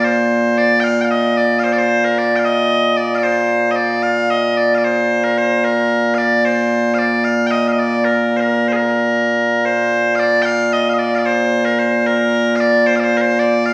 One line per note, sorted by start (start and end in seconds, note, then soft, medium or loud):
0.00 13.73 A#2 medium
0.00 13.73 A#3 medium
0.04 0.58 C5 medium
0.58 0.80 D5 loud
0.80 1.01 F5 loud
0.80 0.84 G5 loud
1.01 1.11 F5 medium
1.01 1.05 G5 medium
1.11 1.37 D#5 medium
1.37 1.59 D5 medium
1.59 1.64 F5 medium
1.64 1.73 C5 medium
1.73 1.78 D5 medium
1.78 2.05 C5 medium
2.05 2.18 A#4 medium
2.18 2.36 D5 medium
2.36 2.45 F5 medium
2.36 2.39 G5 medium
2.45 2.97 D#5 loud
2.97 3.15 D5 medium
3.15 3.23 D5 medium
3.15 3.18 F5 medium
3.23 3.71 C5 loud
3.71 3.76 D#5 medium
3.76 4.03 D5 medium
4.03 4.30 F5 loud
4.30 4.57 D#5 loud
4.57 4.75 D5 medium
4.75 4.84 D5 medium
4.75 4.78 F5 medium
4.84 5.24 C5 medium
5.24 5.38 A#4 medium
5.38 5.65 C5 medium
5.65 6.15 A#4 medium
6.15 6.45 D5 medium
6.15 6.18 F5 medium
6.45 6.94 C5 medium
6.94 6.98 F5 medium
6.98 7.24 D5 medium
7.24 7.47 F5 loud
7.47 7.51 G5 medium
7.51 7.68 D#5 medium
7.68 7.72 F5 medium
7.72 7.79 D#5 medium
7.79 8.05 D5 medium
8.05 8.37 A#4 medium
8.37 8.68 A#4 medium
8.37 8.40 C5 medium
8.68 8.73 C5 medium
8.73 8.76 G#4 medium
8.73 9.65 A#4 medium
9.65 10.15 C5 medium
10.15 10.42 D5 medium
10.15 10.19 F5 medium
10.42 10.73 F5 loud
10.42 10.45 G5 loud
10.73 10.89 D#5 medium
10.89 10.93 F5 medium
10.93 10.99 D#5 medium
10.99 11.15 D5 medium
11.15 11.26 D5 medium
11.15 11.18 F5 medium
11.26 11.65 C5 loud
11.65 11.79 A#4 medium
11.79 12.07 C5 medium
12.07 12.56 A#4 loud
12.56 12.60 F5 medium
12.60 12.86 D5 medium
12.86 12.96 C5 medium
12.96 13.04 D5 medium
12.96 13.00 F5 medium
13.04 13.17 C5 loud
13.17 13.21 A#4 medium
13.21 13.39 C5 loud
13.39 13.66 D5 loud
13.66 13.73 F5 loud